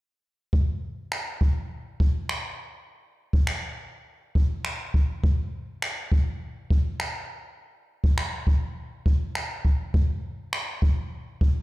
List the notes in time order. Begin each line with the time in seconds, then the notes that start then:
0.53 kick
1.12 finger snap
1.41 kick
2.00 kick
2.29 finger snap
3.33 kick
3.47 finger snap
4.35 kick
4.65 finger snap
4.94 kick
5.24 kick
5.82 finger snap
6.12 kick
6.70 kick
7.00 finger snap
8.04 kick
8.18 finger snap
8.47 kick
9.06 kick
9.35 finger snap
9.65 kick
9.94 kick
10.53 finger snap
10.82 kick
11.41 kick